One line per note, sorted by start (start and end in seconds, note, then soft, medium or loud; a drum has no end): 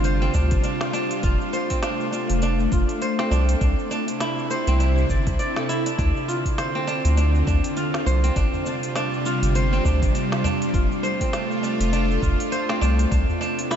0.00 0.30 G1 medium
0.00 1.21 C3 medium
0.00 1.21 G3 medium
0.00 0.21 C4 loud
0.00 0.34 D4 loud
0.00 1.23 F4 medium
0.00 3.57 F4 medium
0.04 1.23 C5 medium
0.04 open hi-hat soft
0.04 shaker soft
0.22 1.70 C4 loud
0.22 shaker soft
0.34 0.53 D2 loud
0.34 0.64 D4 loud
0.34 kick medium
0.34 shaker medium
0.51 0.61 G1 medium
0.51 kick loud
0.51 open hi-hat medium
0.51 shaker soft
0.64 0.93 D4 medium
0.64 open hi-hat soft
0.64 shaker soft
0.81 snare medium
0.81 shaker soft
0.93 1.82 D4 loud
0.93 shaker medium
1.11 open hi-hat medium
1.11 shaker soft
1.23 1.37 F1 loud
1.23 3.59 A3 medium
1.23 2.72 F4 medium
1.23 kick loud
1.23 open hi-hat soft
1.23 shaker soft
1.41 shaker soft
1.53 2.72 C5 loud
1.53 shaker medium
1.70 3.19 C4 medium
1.70 kick medium
1.70 open hi-hat medium
1.70 shaker soft
1.83 2.12 D4 loud
1.83 snare medium
1.83 open hi-hat soft
1.83 shaker soft
2.00 shaker soft
2.12 2.42 D4 medium
2.12 shaker medium
2.30 2.68 F1 medium
2.30 open hi-hat medium
2.30 shaker soft
2.42 3.31 D4 loud
2.42 open hi-hat soft
2.42 shaker soft
2.60 shaker soft
2.72 2.85 F1 loud
2.72 4.27 F4 medium
2.72 kick loud
2.72 shaker medium
2.89 open hi-hat soft
2.89 shaker soft
3.02 4.21 C5 loud
3.02 open hi-hat soft
3.02 shaker soft
3.19 4.67 C4 loud
3.19 snare medium
3.19 shaker soft
3.31 3.56 C2 medium
3.31 3.61 D4 loud
3.31 shaker medium
3.49 open hi-hat medium
3.49 shaker soft
3.61 3.75 C2 loud
3.61 5.97 C3 medium
3.61 3.91 D4 medium
3.61 5.97 E4 loud
3.61 kick loud
3.61 open hi-hat soft
3.61 shaker soft
3.79 shaker soft
3.91 4.80 D4 loud
3.91 shaker medium
4.08 open hi-hat medium
4.08 shaker soft
4.20 5.69 E4 medium
4.20 snare medium
4.20 open hi-hat soft
4.20 shaker soft
4.38 shaker soft
4.50 5.69 C5 loud
4.50 shaker medium
4.67 5.05 C2 medium
4.67 6.48 C4 loud
4.67 open hi-hat medium
4.67 shaker soft
4.80 5.86 D4 medium
4.80 open hi-hat soft
4.80 shaker soft
4.98 shaker soft
5.09 5.28 G1 loud
5.09 5.39 D5 medium
5.09 kick medium
5.09 shaker medium
5.27 5.37 C2 medium
5.27 kick loud
5.27 open hi-hat medium
5.27 shaker soft
5.39 6.50 D5 medium
5.39 open hi-hat soft
5.39 shaker soft
5.57 6.89 A4 medium
5.57 snare medium
5.57 shaker soft
5.69 6.34 E4 loud
5.69 shaker medium
5.86 5.98 D4 medium
5.86 open hi-hat medium
5.86 shaker soft
5.98 6.12 D2 loud
5.98 8.34 D3 medium
5.98 8.34 C4 medium
5.98 6.87 D4 loud
5.98 10.70 F4 loud
5.98 kick loud
5.98 open hi-hat soft
5.98 shaker soft
6.17 shaker soft
6.28 7.76 F4 medium
6.28 shaker medium
6.46 kick medium
6.46 open hi-hat medium
6.46 shaker soft
6.58 7.77 C5 loud
6.58 snare medium
6.58 open hi-hat soft
6.58 shaker soft
6.75 8.23 C4 loud
6.75 shaker soft
6.87 7.17 D4 loud
6.87 shaker medium
7.05 7.43 D2 medium
7.05 open hi-hat medium
7.05 shaker soft
7.17 7.47 D4 medium
7.17 open hi-hat soft
7.17 shaker soft
7.35 shaker soft
7.47 7.61 D2 loud
7.47 8.36 D4 loud
7.47 kick loud
7.47 udu medium
7.47 shaker medium
7.64 open hi-hat soft
7.64 shaker soft
7.77 9.26 F4 medium
7.77 open hi-hat soft
7.77 shaker soft
7.94 snare medium
7.94 shaker soft
8.06 8.31 C2 medium
8.06 9.25 C5 loud
8.06 shaker medium
8.24 9.72 C4 loud
8.24 open hi-hat soft
8.24 shaker soft
8.36 8.50 G1 loud
8.36 10.72 C3 medium
8.36 10.72 G3 medium
8.36 8.66 D4 loud
8.36 kick loud
8.36 open hi-hat soft
8.36 shaker soft
8.54 udu medium
8.54 shaker soft
8.66 8.96 D4 medium
8.66 shaker medium
8.83 open hi-hat medium
8.83 shaker soft
8.96 9.84 D4 loud
8.96 snare medium
8.96 open hi-hat soft
8.96 shaker soft
9.14 shaker soft
9.26 10.73 F4 medium
9.26 shaker medium
9.43 9.80 G1 medium
9.43 open hi-hat medium
9.43 shaker soft
9.55 10.74 C5 loud
9.55 open hi-hat soft
9.55 shaker soft
9.73 11.20 C4 loud
9.73 shaker soft
9.85 10.04 D2 loud
9.85 10.14 D4 loud
9.85 kick medium
9.85 shaker medium
10.02 10.12 G1 medium
10.02 kick loud
10.02 open hi-hat medium
10.02 shaker soft
10.15 10.44 D4 medium
10.15 open hi-hat soft
10.15 shaker soft
10.32 snare medium
10.32 shaker soft
10.44 11.33 D4 loud
10.44 udu medium
10.44 shaker medium
10.62 open hi-hat medium
10.62 shaker soft
10.73 10.87 F1 loud
10.73 13.09 A3 medium
10.73 13.09 F4 medium
10.73 12.22 F4 medium
10.73 kick loud
10.73 open hi-hat soft
10.73 shaker soft
10.92 shaker soft
11.03 12.22 C5 loud
11.03 shaker medium
11.21 12.69 C4 medium
11.21 kick medium
11.21 open hi-hat medium
11.21 shaker soft
11.33 11.62 D4 loud
11.33 snare medium
11.33 open hi-hat soft
11.33 shaker soft
11.51 shaker soft
11.63 11.92 D4 medium
11.63 shaker medium
11.80 12.18 F1 medium
11.80 open hi-hat medium
11.80 shaker soft
11.93 12.81 D4 medium
11.93 open hi-hat soft
11.93 shaker soft
12.11 shaker soft
12.22 12.36 F1 loud
12.22 13.76 F4 medium
12.22 kick loud
12.22 udu loud
12.22 shaker medium
12.40 open hi-hat medium
12.40 shaker soft
12.52 13.71 C5 loud
12.52 open hi-hat soft
12.52 shaker soft
12.69 13.76 C4 loud
12.69 snare medium
12.69 shaker soft
12.81 13.06 C2 medium
12.81 13.11 D4 loud
12.81 shaker medium
12.99 open hi-hat medium
12.99 shaker soft
13.11 13.25 C2 loud
13.11 13.76 C3 medium
13.11 13.76 B3 medium
13.11 13.40 D4 medium
13.11 13.76 E4 medium
13.11 kick loud
13.11 open hi-hat soft
13.11 shaker soft
13.29 udu medium
13.29 shaker soft
13.41 13.76 D4 loud
13.41 shaker medium
13.59 open hi-hat medium
13.59 shaker soft
13.71 13.76 E4 medium
13.71 snare medium
13.71 open hi-hat soft
13.71 shaker soft